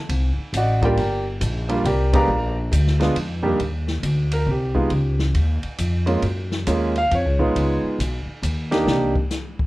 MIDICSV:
0, 0, Header, 1, 5, 480
1, 0, Start_track
1, 0, Key_signature, -3, "major"
1, 0, Tempo, 438917
1, 1056, Time_signature, 3, 2, 24, 8
1, 10571, End_track
2, 0, Start_track
2, 0, Title_t, "Grand piano"
2, 0, Program_c, 0, 0
2, 619, Note_on_c, 0, 78, 71
2, 627, Note_on_c, 0, 66, 57
2, 627, Note_on_c, 0, 74, 54
2, 627, Note_on_c, 0, 75, 56
2, 900, Note_off_c, 0, 78, 0
2, 900, Note_on_c, 0, 58, 66
2, 901, Note_on_c, 0, 55, 64
2, 904, Note_off_c, 0, 66, 0
2, 904, Note_off_c, 0, 74, 0
2, 904, Note_off_c, 0, 75, 0
2, 904, Note_on_c, 0, 62, 58
2, 909, Note_on_c, 0, 65, 74
2, 927, Note_on_c, 0, 79, 79
2, 930, Note_on_c, 0, 67, 64
2, 931, Note_on_c, 0, 70, 69
2, 931, Note_on_c, 0, 74, 71
2, 1045, Note_off_c, 0, 58, 0
2, 1046, Note_off_c, 0, 55, 0
2, 1047, Note_off_c, 0, 62, 0
2, 1050, Note_off_c, 0, 65, 0
2, 1354, Note_off_c, 0, 79, 0
2, 1356, Note_off_c, 0, 67, 0
2, 1357, Note_off_c, 0, 70, 0
2, 1357, Note_off_c, 0, 74, 0
2, 1844, Note_on_c, 0, 55, 63
2, 1846, Note_on_c, 0, 58, 52
2, 1850, Note_on_c, 0, 62, 56
2, 1853, Note_on_c, 0, 65, 69
2, 1996, Note_off_c, 0, 55, 0
2, 1997, Note_off_c, 0, 58, 0
2, 2000, Note_off_c, 0, 62, 0
2, 2001, Note_off_c, 0, 65, 0
2, 2030, Note_on_c, 0, 79, 69
2, 2034, Note_on_c, 0, 74, 57
2, 2036, Note_on_c, 0, 70, 61
2, 2037, Note_on_c, 0, 67, 59
2, 2323, Note_off_c, 0, 67, 0
2, 2324, Note_off_c, 0, 79, 0
2, 2326, Note_off_c, 0, 74, 0
2, 2327, Note_off_c, 0, 70, 0
2, 2329, Note_on_c, 0, 56, 66
2, 2330, Note_on_c, 0, 59, 61
2, 2335, Note_on_c, 0, 62, 60
2, 2340, Note_on_c, 0, 67, 75
2, 2350, Note_on_c, 0, 82, 85
2, 2354, Note_on_c, 0, 70, 69
2, 2355, Note_on_c, 0, 74, 67
2, 2361, Note_on_c, 0, 77, 64
2, 2478, Note_off_c, 0, 56, 0
2, 2479, Note_off_c, 0, 59, 0
2, 2481, Note_off_c, 0, 62, 0
2, 2484, Note_off_c, 0, 67, 0
2, 2784, Note_off_c, 0, 82, 0
2, 2786, Note_off_c, 0, 70, 0
2, 2787, Note_off_c, 0, 74, 0
2, 2790, Note_off_c, 0, 77, 0
2, 3278, Note_on_c, 0, 56, 69
2, 3288, Note_on_c, 0, 59, 64
2, 3288, Note_on_c, 0, 62, 60
2, 3291, Note_on_c, 0, 65, 75
2, 3432, Note_off_c, 0, 56, 0
2, 3437, Note_off_c, 0, 62, 0
2, 3438, Note_off_c, 0, 59, 0
2, 3439, Note_off_c, 0, 65, 0
2, 3747, Note_on_c, 0, 39, 63
2, 3747, Note_on_c, 0, 55, 57
2, 3754, Note_on_c, 0, 58, 57
2, 3754, Note_on_c, 0, 67, 73
2, 3756, Note_on_c, 0, 62, 60
2, 3907, Note_off_c, 0, 39, 0
2, 3907, Note_off_c, 0, 55, 0
2, 3910, Note_off_c, 0, 58, 0
2, 3910, Note_off_c, 0, 67, 0
2, 3911, Note_off_c, 0, 62, 0
2, 4741, Note_on_c, 0, 70, 71
2, 4896, Note_off_c, 0, 70, 0
2, 4936, Note_on_c, 0, 67, 46
2, 5193, Note_on_c, 0, 56, 64
2, 5193, Note_on_c, 0, 59, 53
2, 5195, Note_on_c, 0, 63, 57
2, 5201, Note_on_c, 0, 65, 66
2, 5350, Note_off_c, 0, 56, 0
2, 5350, Note_off_c, 0, 59, 0
2, 5351, Note_off_c, 0, 63, 0
2, 5354, Note_off_c, 0, 65, 0
2, 5662, Note_off_c, 0, 67, 0
2, 6627, Note_on_c, 0, 56, 64
2, 6631, Note_on_c, 0, 61, 61
2, 6632, Note_on_c, 0, 58, 57
2, 6637, Note_on_c, 0, 65, 68
2, 6788, Note_off_c, 0, 56, 0
2, 6790, Note_off_c, 0, 58, 0
2, 6790, Note_off_c, 0, 61, 0
2, 6793, Note_off_c, 0, 65, 0
2, 7295, Note_on_c, 0, 56, 60
2, 7295, Note_on_c, 0, 61, 54
2, 7299, Note_on_c, 0, 65, 64
2, 7300, Note_on_c, 0, 58, 51
2, 7575, Note_off_c, 0, 56, 0
2, 7575, Note_off_c, 0, 61, 0
2, 7577, Note_off_c, 0, 65, 0
2, 7578, Note_off_c, 0, 58, 0
2, 7631, Note_on_c, 0, 77, 99
2, 7783, Note_off_c, 0, 77, 0
2, 7817, Note_on_c, 0, 73, 72
2, 8084, Note_on_c, 0, 56, 64
2, 8085, Note_on_c, 0, 63, 56
2, 8088, Note_on_c, 0, 59, 55
2, 8090, Note_on_c, 0, 65, 69
2, 8545, Note_off_c, 0, 73, 0
2, 8701, Note_off_c, 0, 56, 0
2, 8702, Note_off_c, 0, 63, 0
2, 8703, Note_off_c, 0, 59, 0
2, 8704, Note_off_c, 0, 65, 0
2, 9528, Note_on_c, 0, 58, 75
2, 9530, Note_on_c, 0, 63, 65
2, 9531, Note_on_c, 0, 62, 64
2, 9534, Note_on_c, 0, 67, 79
2, 9681, Note_off_c, 0, 58, 0
2, 9682, Note_off_c, 0, 62, 0
2, 9682, Note_off_c, 0, 63, 0
2, 9684, Note_off_c, 0, 67, 0
2, 9698, Note_on_c, 0, 58, 55
2, 9698, Note_on_c, 0, 62, 51
2, 9702, Note_on_c, 0, 67, 60
2, 9704, Note_on_c, 0, 63, 45
2, 9979, Note_off_c, 0, 58, 0
2, 9979, Note_off_c, 0, 62, 0
2, 9981, Note_off_c, 0, 67, 0
2, 9982, Note_off_c, 0, 63, 0
2, 10571, End_track
3, 0, Start_track
3, 0, Title_t, "Upright bass"
3, 0, Program_c, 1, 32
3, 99, Note_on_c, 1, 36, 85
3, 388, Note_off_c, 1, 36, 0
3, 577, Note_on_c, 1, 33, 77
3, 1042, Note_off_c, 1, 33, 0
3, 1058, Note_on_c, 1, 31, 77
3, 1522, Note_off_c, 1, 31, 0
3, 1539, Note_on_c, 1, 34, 90
3, 2002, Note_off_c, 1, 34, 0
3, 2014, Note_on_c, 1, 36, 84
3, 2479, Note_off_c, 1, 36, 0
3, 2487, Note_on_c, 1, 34, 83
3, 2955, Note_off_c, 1, 34, 0
3, 2969, Note_on_c, 1, 38, 89
3, 3436, Note_off_c, 1, 38, 0
3, 3449, Note_on_c, 1, 41, 84
3, 3916, Note_off_c, 1, 41, 0
3, 3929, Note_on_c, 1, 39, 75
3, 4396, Note_off_c, 1, 39, 0
3, 4408, Note_on_c, 1, 38, 78
3, 4875, Note_off_c, 1, 38, 0
3, 4885, Note_on_c, 1, 36, 83
3, 5354, Note_off_c, 1, 36, 0
3, 5364, Note_on_c, 1, 37, 78
3, 5834, Note_off_c, 1, 37, 0
3, 5842, Note_on_c, 1, 39, 87
3, 6137, Note_off_c, 1, 39, 0
3, 6325, Note_on_c, 1, 41, 76
3, 6795, Note_off_c, 1, 41, 0
3, 6804, Note_on_c, 1, 42, 81
3, 7275, Note_off_c, 1, 42, 0
3, 7292, Note_on_c, 1, 39, 89
3, 7760, Note_off_c, 1, 39, 0
3, 7776, Note_on_c, 1, 41, 83
3, 7930, Note_off_c, 1, 41, 0
3, 7930, Note_on_c, 1, 37, 50
3, 8074, Note_off_c, 1, 37, 0
3, 8081, Note_on_c, 1, 34, 62
3, 8237, Note_off_c, 1, 34, 0
3, 8259, Note_on_c, 1, 37, 72
3, 8547, Note_off_c, 1, 37, 0
3, 8734, Note_on_c, 1, 35, 80
3, 9025, Note_off_c, 1, 35, 0
3, 9214, Note_on_c, 1, 39, 81
3, 9676, Note_off_c, 1, 39, 0
3, 9683, Note_on_c, 1, 36, 80
3, 9993, Note_off_c, 1, 36, 0
3, 10571, End_track
4, 0, Start_track
4, 0, Title_t, "Muted upright bass strokes"
4, 408, Note_on_c, 9, 29, 37
4, 517, Note_off_c, 9, 29, 0
4, 6164, Note_on_c, 9, 29, 37
4, 6273, Note_off_c, 9, 29, 0
4, 8568, Note_on_c, 9, 29, 37
4, 8678, Note_off_c, 9, 29, 0
4, 9032, Note_on_c, 9, 29, 36
4, 9141, Note_off_c, 9, 29, 0
4, 10571, End_track
5, 0, Start_track
5, 0, Title_t, "Drums"
5, 103, Note_on_c, 9, 51, 61
5, 104, Note_on_c, 9, 36, 23
5, 212, Note_off_c, 9, 51, 0
5, 213, Note_off_c, 9, 36, 0
5, 584, Note_on_c, 9, 36, 21
5, 587, Note_on_c, 9, 44, 49
5, 587, Note_on_c, 9, 51, 67
5, 693, Note_off_c, 9, 36, 0
5, 696, Note_off_c, 9, 44, 0
5, 696, Note_off_c, 9, 51, 0
5, 895, Note_on_c, 9, 36, 60
5, 903, Note_on_c, 9, 51, 43
5, 1004, Note_off_c, 9, 36, 0
5, 1012, Note_off_c, 9, 51, 0
5, 1062, Note_on_c, 9, 36, 20
5, 1066, Note_on_c, 9, 51, 56
5, 1172, Note_off_c, 9, 36, 0
5, 1176, Note_off_c, 9, 51, 0
5, 1541, Note_on_c, 9, 36, 26
5, 1542, Note_on_c, 9, 44, 55
5, 1542, Note_on_c, 9, 51, 66
5, 1650, Note_off_c, 9, 36, 0
5, 1651, Note_off_c, 9, 44, 0
5, 1651, Note_off_c, 9, 51, 0
5, 1849, Note_on_c, 9, 51, 43
5, 1959, Note_off_c, 9, 51, 0
5, 2019, Note_on_c, 9, 36, 22
5, 2025, Note_on_c, 9, 51, 56
5, 2128, Note_off_c, 9, 36, 0
5, 2134, Note_off_c, 9, 51, 0
5, 2330, Note_on_c, 9, 36, 85
5, 2331, Note_on_c, 9, 51, 67
5, 2439, Note_off_c, 9, 36, 0
5, 2440, Note_off_c, 9, 51, 0
5, 2977, Note_on_c, 9, 36, 23
5, 2980, Note_on_c, 9, 44, 54
5, 2980, Note_on_c, 9, 51, 67
5, 3087, Note_off_c, 9, 36, 0
5, 3090, Note_off_c, 9, 44, 0
5, 3090, Note_off_c, 9, 51, 0
5, 3141, Note_on_c, 9, 38, 30
5, 3250, Note_off_c, 9, 38, 0
5, 3287, Note_on_c, 9, 51, 39
5, 3296, Note_on_c, 9, 38, 42
5, 3396, Note_off_c, 9, 51, 0
5, 3405, Note_off_c, 9, 38, 0
5, 3454, Note_on_c, 9, 36, 20
5, 3456, Note_on_c, 9, 51, 60
5, 3564, Note_off_c, 9, 36, 0
5, 3565, Note_off_c, 9, 51, 0
5, 3932, Note_on_c, 9, 36, 20
5, 3935, Note_on_c, 9, 51, 47
5, 4042, Note_off_c, 9, 36, 0
5, 4044, Note_off_c, 9, 51, 0
5, 4244, Note_on_c, 9, 38, 44
5, 4353, Note_off_c, 9, 38, 0
5, 4412, Note_on_c, 9, 36, 18
5, 4412, Note_on_c, 9, 44, 46
5, 4412, Note_on_c, 9, 51, 61
5, 4521, Note_off_c, 9, 36, 0
5, 4521, Note_off_c, 9, 44, 0
5, 4521, Note_off_c, 9, 51, 0
5, 4721, Note_on_c, 9, 51, 60
5, 4831, Note_off_c, 9, 51, 0
5, 4890, Note_on_c, 9, 36, 22
5, 5000, Note_off_c, 9, 36, 0
5, 5200, Note_on_c, 9, 36, 45
5, 5309, Note_off_c, 9, 36, 0
5, 5361, Note_on_c, 9, 51, 44
5, 5367, Note_on_c, 9, 36, 18
5, 5470, Note_off_c, 9, 51, 0
5, 5476, Note_off_c, 9, 36, 0
5, 5677, Note_on_c, 9, 38, 47
5, 5786, Note_off_c, 9, 38, 0
5, 5845, Note_on_c, 9, 51, 52
5, 5847, Note_on_c, 9, 36, 19
5, 5954, Note_off_c, 9, 51, 0
5, 5956, Note_off_c, 9, 36, 0
5, 6153, Note_on_c, 9, 51, 38
5, 6263, Note_off_c, 9, 51, 0
5, 6323, Note_on_c, 9, 44, 60
5, 6323, Note_on_c, 9, 51, 62
5, 6327, Note_on_c, 9, 36, 22
5, 6432, Note_off_c, 9, 44, 0
5, 6432, Note_off_c, 9, 51, 0
5, 6437, Note_off_c, 9, 36, 0
5, 6636, Note_on_c, 9, 51, 40
5, 6746, Note_off_c, 9, 51, 0
5, 6805, Note_on_c, 9, 51, 52
5, 6811, Note_on_c, 9, 36, 19
5, 6914, Note_off_c, 9, 51, 0
5, 6921, Note_off_c, 9, 36, 0
5, 7126, Note_on_c, 9, 38, 46
5, 7235, Note_off_c, 9, 38, 0
5, 7291, Note_on_c, 9, 44, 61
5, 7291, Note_on_c, 9, 51, 62
5, 7295, Note_on_c, 9, 36, 25
5, 7401, Note_off_c, 9, 44, 0
5, 7401, Note_off_c, 9, 51, 0
5, 7404, Note_off_c, 9, 36, 0
5, 7606, Note_on_c, 9, 51, 37
5, 7716, Note_off_c, 9, 51, 0
5, 7778, Note_on_c, 9, 36, 17
5, 7778, Note_on_c, 9, 51, 53
5, 7888, Note_off_c, 9, 36, 0
5, 7888, Note_off_c, 9, 51, 0
5, 8092, Note_on_c, 9, 36, 37
5, 8202, Note_off_c, 9, 36, 0
5, 8263, Note_on_c, 9, 36, 21
5, 8267, Note_on_c, 9, 51, 54
5, 8372, Note_off_c, 9, 36, 0
5, 8377, Note_off_c, 9, 51, 0
5, 8742, Note_on_c, 9, 36, 19
5, 8748, Note_on_c, 9, 44, 55
5, 8748, Note_on_c, 9, 51, 63
5, 8851, Note_off_c, 9, 36, 0
5, 8858, Note_off_c, 9, 44, 0
5, 8858, Note_off_c, 9, 51, 0
5, 9221, Note_on_c, 9, 36, 18
5, 9222, Note_on_c, 9, 44, 47
5, 9222, Note_on_c, 9, 51, 63
5, 9331, Note_off_c, 9, 36, 0
5, 9331, Note_off_c, 9, 44, 0
5, 9331, Note_off_c, 9, 51, 0
5, 9537, Note_on_c, 9, 51, 41
5, 9538, Note_on_c, 9, 38, 47
5, 9646, Note_off_c, 9, 51, 0
5, 9647, Note_off_c, 9, 38, 0
5, 9703, Note_on_c, 9, 38, 78
5, 9812, Note_off_c, 9, 38, 0
5, 10011, Note_on_c, 9, 36, 67
5, 10121, Note_off_c, 9, 36, 0
5, 10176, Note_on_c, 9, 44, 57
5, 10177, Note_on_c, 9, 38, 43
5, 10285, Note_off_c, 9, 44, 0
5, 10286, Note_off_c, 9, 38, 0
5, 10492, Note_on_c, 9, 36, 71
5, 10571, Note_off_c, 9, 36, 0
5, 10571, End_track
0, 0, End_of_file